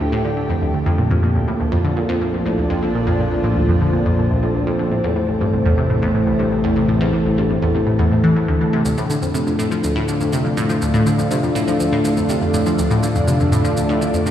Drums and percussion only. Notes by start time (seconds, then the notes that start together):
8.85 shaker
8.98 shaker
9.10 high conga, shaker
9.22 shaker
9.35 shaker
9.47 high conga, shaker
9.59 shaker
9.71 shaker
9.84 high conga, shaker
10.08 shaker
10.21 high conga, shaker
10.33 shaker
10.57 high conga, shaker
10.70 shaker
10.82 shaker
10.94 high conga, shaker
11.06 shaker
11.19 shaker
11.31 high conga, shaker
11.43 shaker
11.56 shaker
11.68 high conga, shaker
11.80 shaker
12.05 high conga, shaker
12.17 shaker
12.29 shaker
12.42 high conga
12.54 shaker
12.66 shaker
12.79 high conga, shaker
12.91 shaker
13.03 shaker
13.15 high conga, shaker
13.28 shaker
13.40 shaker
13.52 high conga, shaker
13.65 shaker
13.77 shaker
13.89 high conga
14.02 shaker
14.14 shaker
14.26 high conga, shaker